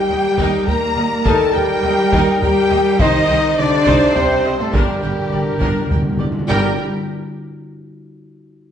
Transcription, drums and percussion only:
0.38 taiko
0.68 taiko low
1.26 taiko
2.13 taiko
2.42 taiko low
3.00 taiko
3.87 taiko
4.16 taiko low
4.74 taiko
5.61 taiko
5.91 taiko low

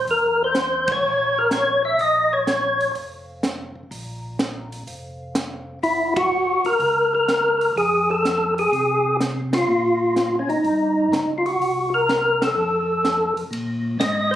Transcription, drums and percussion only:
0.07 open hi-hat
0.55 snare, closed hi-hat
0.88 kick, ride
1.51 snare, closed hi-hat
1.99 open hi-hat
2.47 snare, closed hi-hat
2.81 open hi-hat
2.95 open hi-hat
3.43 snare, closed hi-hat
3.92 open hi-hat
4.39 snare, closed hi-hat
4.72 open hi-hat
4.87 open hi-hat
5.35 snare, closed hi-hat
5.83 open hi-hat
6.16 kick, ride
6.65 open hi-hat
6.80 open hi-hat
7.28 snare, closed hi-hat
7.61 open hi-hat
7.77 open hi-hat
8.25 snare, closed hi-hat
8.58 open hi-hat
8.73 open hi-hat
9.20 snare, closed hi-hat
9.53 snare, ride
10.16 snare, closed hi-hat
10.50 open hi-hat
10.64 open hi-hat
11.13 snare, closed hi-hat
11.46 open hi-hat
11.62 open hi-hat
12.09 snare, closed hi-hat
12.42 snare, ride
13.05 snare, closed hi-hat
13.37 open hi-hat
13.53 ride
14.00 snare, hi-hat pedal, ride

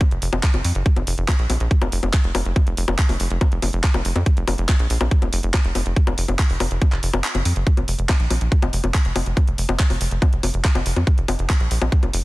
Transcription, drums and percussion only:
0.01 kick, closed hi-hat, high bongo
0.11 closed hi-hat
0.22 open hi-hat
0.33 closed hi-hat, high bongo
0.43 kick, clap, closed hi-hat
0.54 closed hi-hat, high bongo
0.65 open hi-hat
0.75 closed hi-hat
0.86 kick, closed hi-hat
0.96 closed hi-hat, high bongo
1.07 open hi-hat
1.18 closed hi-hat
1.28 kick, clap, closed hi-hat, high bongo
1.39 closed hi-hat
1.50 open hi-hat, high bongo
1.60 closed hi-hat
1.71 kick, closed hi-hat
1.82 closed hi-hat, high bongo
1.92 open hi-hat
2.03 closed hi-hat, high bongo
2.13 kick, clap, closed hi-hat
2.24 closed hi-hat
2.35 open hi-hat, high bongo
2.45 closed hi-hat
2.56 kick, closed hi-hat, high bongo
2.67 closed hi-hat
2.77 open hi-hat
2.88 high bongo
2.99 kick, clap, closed hi-hat
3.09 open hi-hat, high bongo
3.20 open hi-hat
3.30 closed hi-hat
3.41 kick, closed hi-hat, high bongo
3.52 closed hi-hat
3.62 open hi-hat, high bongo
3.73 closed hi-hat
3.84 kick, clap, closed hi-hat
3.94 closed hi-hat, high bongo
4.05 open hi-hat
4.16 closed hi-hat, high bongo
4.26 kick, closed hi-hat
4.37 closed hi-hat
4.48 open hi-hat, high bongo
4.58 closed hi-hat
4.69 kick, clap, closed hi-hat, high bongo
4.79 closed hi-hat
4.90 open hi-hat
5.01 closed hi-hat, high bongo
5.11 kick, closed hi-hat
5.22 closed hi-hat, high bongo
5.33 open hi-hat
5.43 closed hi-hat
5.54 kick, clap, closed hi-hat, high bongo
5.65 closed hi-hat
5.75 open hi-hat, high bongo
5.86 closed hi-hat
5.96 kick, closed hi-hat
6.07 closed hi-hat, high bongo
6.18 open hi-hat
6.28 closed hi-hat, high bongo
6.39 kick, clap, closed hi-hat
6.50 open hi-hat
6.60 open hi-hat, high bongo
6.71 closed hi-hat
6.82 kick, closed hi-hat, high bongo
6.92 clap, closed hi-hat
7.03 open hi-hat
7.13 closed hi-hat, high bongo
7.24 clap, closed hi-hat
7.35 closed hi-hat, high bongo
7.45 open hi-hat
7.56 closed hi-hat
7.67 kick, closed hi-hat
7.77 closed hi-hat, high bongo
7.88 open hi-hat
7.99 closed hi-hat
8.09 kick, clap, closed hi-hat, high bongo
8.20 closed hi-hat
8.30 open hi-hat, high bongo
8.41 closed hi-hat
8.52 kick, closed hi-hat
8.62 closed hi-hat, high bongo
8.73 open hi-hat
8.84 closed hi-hat, high bongo
8.94 kick, clap, closed hi-hat
9.05 closed hi-hat
9.16 open hi-hat, high bongo
9.26 closed hi-hat
9.37 kick, closed hi-hat, high bongo
9.48 closed hi-hat
9.58 open hi-hat
9.69 closed hi-hat, high bongo
9.79 kick, clap, closed hi-hat
9.90 open hi-hat, high bongo
10.01 open hi-hat
10.11 closed hi-hat
10.22 kick, closed hi-hat, high bongo
10.33 closed hi-hat
10.43 open hi-hat, high bongo
10.54 closed hi-hat
10.65 kick, clap, closed hi-hat
10.75 closed hi-hat, high bongo
10.86 open hi-hat
10.96 closed hi-hat, high bongo
11.07 kick, closed hi-hat
11.18 closed hi-hat
11.28 open hi-hat, high bongo
11.39 closed hi-hat
11.50 kick, clap, closed hi-hat, high bongo
11.60 closed hi-hat
11.71 open hi-hat
11.82 closed hi-hat, high bongo
11.92 kick, closed hi-hat
12.03 closed hi-hat, high bongo
12.13 open hi-hat

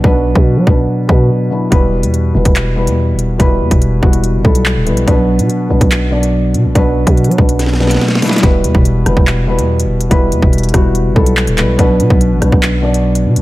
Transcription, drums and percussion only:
0.04 kick
0.35 kick
0.67 kick
1.09 kick
1.72 kick, closed hi-hat
2.03 closed hi-hat
2.14 closed hi-hat
2.45 kick, closed hi-hat
2.56 clap, closed hi-hat
2.87 closed hi-hat
3.19 closed hi-hat
3.40 kick, closed hi-hat
3.71 kick, closed hi-hat
3.82 closed hi-hat
4.03 kick
4.13 closed hi-hat
4.24 closed hi-hat
4.45 kick
4.55 closed hi-hat
4.66 clap
4.87 closed hi-hat
4.97 closed hi-hat
5.08 kick, closed hi-hat
5.39 closed hi-hat
5.50 closed hi-hat
5.81 kick, closed hi-hat
5.91 clap, closed hi-hat
6.23 closed hi-hat
6.54 closed hi-hat
6.75 kick, closed hi-hat
7.07 kick, closed hi-hat
7.17 closed hi-hat
7.24 closed hi-hat
7.31 closed hi-hat
7.38 kick
7.49 closed hi-hat
7.59 snare, closed hi-hat
7.66 snare
7.73 snare
7.80 snare
7.87 snare, closed hi-hat
7.94 snare
8.01 snare
8.08 snare
8.15 snare
8.22 snare, closed hi-hat, open hi-hat
8.28 snare, closed hi-hat
8.33 snare, closed hi-hat
8.38 closed hi-hat
8.43 kick, closed hi-hat
8.64 closed hi-hat
8.75 kick
8.85 closed hi-hat
9.06 cross-stick, closed hi-hat
9.17 kick
9.27 clap
9.59 closed hi-hat
9.80 closed hi-hat
10.01 closed hi-hat
10.11 kick, closed hi-hat
10.32 closed hi-hat
10.42 kick
10.53 closed hi-hat
10.58 closed hi-hat
10.63 closed hi-hat
10.69 closed hi-hat
10.74 kick, cross-stick, closed hi-hat
10.95 closed hi-hat
11.16 kick
11.26 closed hi-hat
11.37 clap
11.47 closed hi-hat
11.58 clap, closed hi-hat
11.79 kick, closed hi-hat
12.00 closed hi-hat
12.10 kick
12.21 closed hi-hat
12.42 cross-stick, closed hi-hat
12.52 kick
12.63 clap
12.94 closed hi-hat
13.15 closed hi-hat
13.36 closed hi-hat

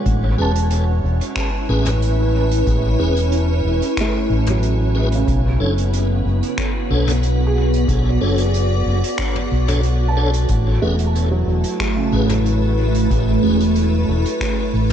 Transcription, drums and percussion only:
0.06 kick, closed hi-hat
0.55 closed hi-hat
0.70 closed hi-hat
1.21 closed hi-hat
1.36 finger snap, kick, closed hi-hat
1.85 closed hi-hat, mid tom
2.02 closed hi-hat
2.51 closed hi-hat
2.67 kick, closed hi-hat
3.16 closed hi-hat
3.32 closed hi-hat
3.82 closed hi-hat
3.97 finger snap, kick, closed hi-hat
4.46 closed hi-hat, mid tom
4.63 closed hi-hat
5.12 closed hi-hat
5.28 kick, closed hi-hat
5.78 closed hi-hat
5.93 closed hi-hat
6.43 closed hi-hat
6.58 finger snap, kick, closed hi-hat
7.08 closed hi-hat, mid tom
7.23 closed hi-hat
7.73 closed hi-hat
7.88 kick, closed hi-hat
8.38 closed hi-hat
8.54 closed hi-hat
9.04 closed hi-hat
9.18 finger snap, kick, closed hi-hat
9.35 mid tom
9.68 closed hi-hat, mid tom
9.83 closed hi-hat
10.33 closed hi-hat
10.48 kick, closed hi-hat
10.99 closed hi-hat
11.15 closed hi-hat
11.64 closed hi-hat
11.80 finger snap, kick, closed hi-hat
12.29 closed hi-hat, mid tom
12.46 closed hi-hat
12.95 closed hi-hat
13.11 kick, closed hi-hat
13.60 closed hi-hat
13.75 closed hi-hat
14.26 closed hi-hat
14.41 finger snap, kick, closed hi-hat

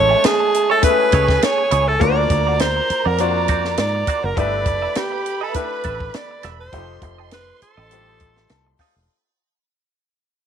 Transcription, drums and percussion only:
0.24 snare, closed hi-hat
0.54 closed hi-hat
0.83 kick, closed hi-hat
1.12 kick, closed hi-hat
1.28 kick, snare
1.42 snare, closed hi-hat
1.71 closed hi-hat
2.01 kick, closed hi-hat
2.30 kick, closed hi-hat
2.59 snare, closed hi-hat
2.90 closed hi-hat
3.18 closed hi-hat
3.48 kick, closed hi-hat
3.65 snare
3.77 snare, closed hi-hat
4.07 kick, closed hi-hat
4.37 kick, closed hi-hat
4.66 kick, closed hi-hat
4.95 snare, closed hi-hat
5.26 closed hi-hat
5.54 kick, closed hi-hat
5.83 kick, closed hi-hat
6.00 kick
6.14 snare, closed hi-hat
6.43 snare, closed hi-hat
6.73 kick, closed hi-hat
7.02 kick, closed hi-hat
7.31 snare, closed hi-hat
7.62 closed hi-hat
7.91 closed hi-hat
8.20 kick, closed hi-hat
8.37 snare
8.49 snare, closed hi-hat
8.79 kick, snare, open hi-hat

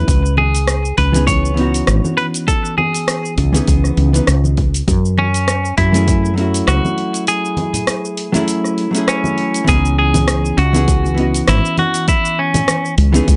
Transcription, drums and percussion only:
0.08 kick, open hi-hat, shaker
0.26 shaker
0.37 high conga
0.55 open hi-hat, shaker
0.68 cross-stick, open hi-hat, shaker
0.85 shaker
0.98 kick, open hi-hat
1.14 open hi-hat, high conga, shaker
1.27 kick, open hi-hat, shaker
1.45 shaker
1.57 open hi-hat
1.74 open hi-hat, shaker
1.87 cross-stick, open hi-hat, shaker
2.04 high conga, shaker
2.18 open hi-hat
2.34 open hi-hat, shaker
2.48 kick, open hi-hat, shaker
2.65 shaker
2.78 high conga
2.94 open hi-hat, shaker
3.08 cross-stick, open hi-hat, shaker
3.25 shaker
3.38 kick, open hi-hat
3.54 open hi-hat, high conga, shaker
3.68 kick, open hi-hat, shaker
3.84 cross-stick, shaker
3.97 open hi-hat
4.14 open hi-hat, shaker
4.27 cross-stick, open hi-hat, shaker
4.44 high conga, shaker
4.57 kick, open hi-hat
4.74 open hi-hat, shaker
4.88 kick, open hi-hat, shaker
5.05 shaker
5.17 high conga
5.34 open hi-hat, shaker
5.48 cross-stick, open hi-hat, shaker
5.65 shaker
5.78 kick, open hi-hat
5.94 open hi-hat, high conga, shaker
6.08 kick, open hi-hat, shaker
6.25 shaker
6.38 open hi-hat
6.54 open hi-hat, shaker
6.68 cross-stick, open hi-hat, shaker
6.85 high conga, shaker
6.98 open hi-hat
7.14 open hi-hat, shaker
7.27 open hi-hat, shaker
7.45 shaker
7.57 open hi-hat, high conga
7.74 open hi-hat, low conga, shaker
7.87 cross-stick, open hi-hat, shaker
8.05 shaker
8.17 open hi-hat
8.34 open hi-hat, high conga, shaker
8.48 open hi-hat, shaker
8.64 cross-stick, shaker
8.78 open hi-hat
8.95 open hi-hat, shaker
9.08 cross-stick, open hi-hat, shaker
9.24 high conga, shaker
9.38 open hi-hat
9.54 open hi-hat, shaker
9.68 kick, open hi-hat, shaker
9.85 shaker
10.14 open hi-hat, high conga, low conga, shaker
10.28 cross-stick, open hi-hat, shaker
10.45 shaker
10.58 open hi-hat
10.74 open hi-hat, shaker
10.88 kick, open hi-hat, shaker
11.04 high conga, shaker
11.18 open hi-hat
11.34 open hi-hat, shaker
11.48 cross-stick, open hi-hat, shaker
11.65 shaker
11.78 open hi-hat, high conga
11.94 open hi-hat, shaker
12.08 kick, open hi-hat, shaker
12.25 shaker
12.54 open hi-hat, high conga, low conga, shaker
12.68 cross-stick, open hi-hat, shaker
12.85 shaker
12.98 open hi-hat
13.14 open hi-hat, shaker
13.28 kick, open hi-hat, shaker

